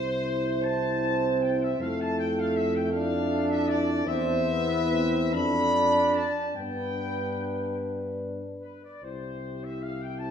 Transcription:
Already playing: tuba C2, euphonium E4, trumpet section C5, flugelhorn C5
0.63 trombone C4, trumpet section A5
1.42 trumpet section G5
1.62 trumpet section E5
1.79 tuba F2, trombone A3, euphonium E4, flugelhorn A4, trumpet section F5
2.00 trumpet section A5
2.18 trumpet section G5
2.39 trumpet section F5
2.55 trumpet section E5
2.75 trumpet section G5
2.92 trombone D4, euphonium E4, flugelhorn A4, trumpet section F5
3.50 trumpet section E5
3.68 trumpet section D5
4.06 tuba E2, trombone C4, euphonium E4, flugelhorn C5, trumpet section E5
4.50 trombone B3
4.69 flugelhorn B4
4.93 trombone C4
5.34 tuba F2, euphonium D4, trombone D4, flugelhorn A4, trumpet section B5
6.14 trumpet section A5
6.54 tuba G2, trombone B3, euphonium D4, flugelhorn B4, trumpet section G5
8.61 trumpet section B4
8.84 trumpet section D5
9.02 tuba C2, euphonium E4, flugelhorn G4, trumpet section C5
9.64 trumpet section E5
9.81 trumpet section F5
10.02 trumpet section G5
10.19 trombone C4, trumpet section A5

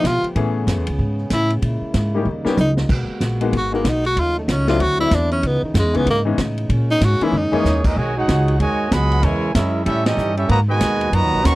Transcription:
Already playing: trombone section F3 A3 B3 G4
0.04 upright bass B2, tenor saxophone F4, kick, snare, hi-hat pedal, ride
0.23 muted upright bass stroke, ride
0.35 upright bass A2, trombone section C#3 C#4 G#4, upright piano E3 A3 B3 C#4 G#4, kick, ride
0.67 upright bass F#2, kick, snare, hi-hat pedal, ride
0.78 upright bass E2
0.87 upright bass C#2, ride
0.99 upright bass G#2, kick
1.21 tenor saxophone C#4
1.30 upright bass A2, tenor saxophone E4, kick, snare, hi-hat pedal, ride
1.50 ride
1.62 upright bass A#2, trombone section G#3 A#3 E4, kick, ride
1.81 muted upright bass stroke
1.94 upright bass G#2, kick, snare, hi-hat pedal, ride
2.15 upright piano G3 A#3 C#4 D#4 G4
2.25 upright bass D#2, trombone section C#3 G3 D#4
2.45 upright piano G3 A#3 C#4 D#4 G4, tenor saxophone B3, muted upright bass stroke, snare
2.57 upright bass C#2, tenor saxophone D#4, hi-hat pedal, high tom
2.77 snare
2.89 upright bass B1, trombone section G#3 A#3 B3 F#4, kick, crash
3.08 muted upright bass stroke
3.20 upright bass A#1, kick, snare, hi-hat pedal, ride
3.41 upright piano G#3 A#3 B3 D#4 F#4, ride
3.53 upright bass G#1, kick, ride
3.58 tenor saxophone F#4
3.72 upright piano G#3 A#3 B3 D#4 F#4, tenor saxophone A#3
3.85 upright bass B1, kick, snare, hi-hat pedal, ride
3.89 tenor saxophone D#4
4.05 tenor saxophone F#4, ride
4.15 upright bass D#2, trombone section C#3 F#3 A3 D#4, kick, ride
4.20 tenor saxophone F4
4.39 tenor saxophone A3
4.48 upright bass C#2, tenor saxophone C#4, kick, snare, hi-hat pedal, ride
4.68 upright piano F#3 A3 C4 D4 E4, tenor saxophone F4, snare, ride
4.79 upright bass D2, trombone section D3 C4 E4, tenor saxophone F#4, kick, ride
4.99 upright piano F#3 A3 C4 D4 E4, tenor saxophone E4
5.11 upright bass E2, tenor saxophone D4, kick, snare, hi-hat pedal, ride
5.31 tenor saxophone C#4, ride
5.43 upright bass C#2, trombone section C#3 E3 B3 D#4, tenor saxophone B3, kick, ride
5.62 tenor saxophone D#3, muted upright bass stroke
5.74 upright bass F#2, kick, snare, hi-hat pedal, ride
5.79 tenor saxophone G#3
5.84 upright bass E2
5.94 upright bass C#2, upright piano E3 G#3 B3 C#4 D#4, tenor saxophone B3, ride
6.06 upright bass G#2, kick, ride
6.11 tenor saxophone A#3
6.25 upright piano E3 G#3 B3 C#4 D#4
6.38 upright bass A2, kick, snare, hi-hat pedal, ride
6.58 ride
6.69 upright bass A#2, trombone section G#3 A#3 C#4, kick, ride
6.91 tenor saxophone D#4
7.01 upright bass G#2, kick, snare, hi-hat pedal, ride
7.05 tenor saxophone F#4
7.20 upright piano E3 G#3 A#3 C#4 D#4, tenor saxophone E4, muted upright bass stroke, ride
7.32 upright bass F#2, trombone section G#3 D#4, mid tom
7.38 tenor saxophone D#4
7.52 upright piano E3 G#3 A#3 C#4 E4, trombone section E3 A#3 C#4, trumpet section A#3 D#4 G#4 C#5, muted upright bass stroke, floor tom
7.64 upright bass D#2, snare, hi-hat pedal
7.84 trombone section E3 A#3 D#4, trumpet section C#4 G#4 A#4 D#5, kick, crash
7.96 upright bass B1, trombone section G#2 D#3 G#3, trumpet section F#4 C#5 D#5 G#5, kick
8.15 trombone section G#3 D#4 F#4, trumpet section D#4 G#4 C#5 F#5
8.28 upright bass C#2, kick, snare, hi-hat pedal, ride
8.48 ride
8.59 upright bass D#2, trombone section G#2 D#3 G#3, trumpet section F#4 C#5 D#5 G#5, kick, ride
8.90 upright bass C#2, trombone section F#3 G#3 B3, trumpet section G#4 D#5 F#5 B5, kick, snare, hi-hat pedal, ride
9.12 ride
9.22 upright bass E2, trombone section C#3 E3 G#3, trumpet section E4 A#4 C#5 G#5, kick, ride
9.54 upright bass F#2, trombone section G#3 C#4 E4, trumpet section C#4 G#4 A#4 E5, kick, snare, hi-hat pedal, ride
9.85 upright bass A2, trombone section G3 C#4 E4, trumpet section C#4 G4 A4 E5, kick, ride
10.05 trombone section E3 G3 D#4, trumpet section C#4 G4 A4 D#5, snare, ride
10.17 upright bass G2, hi-hat pedal
10.36 trombone section G3 C#4 E4, trumpet section C#4 G4 A4 E5, ride
10.49 upright bass G#2, trombone section D#3 F#3 A#3, trumpet section F#4 B4 D#5 A#5, kick, ride
10.68 trombone section B2 D#3 G#3, trumpet section F#4 B4 D#5 G#5
10.81 upright bass D#2, kick, snare, hi-hat pedal, ride
11.01 ride
11.12 upright bass F#2, trombone section A#2 D#3 F#3, trumpet section F#4 B4 D#5 A#5, kick, ride
11.23 upright bass D#2
11.33 upright bass B1
11.43 upright bass D#2, trombone section D#3 F#3 C#4, trumpet section B4 F#5 A#5 C#6, kick, snare, hi-hat pedal, ride

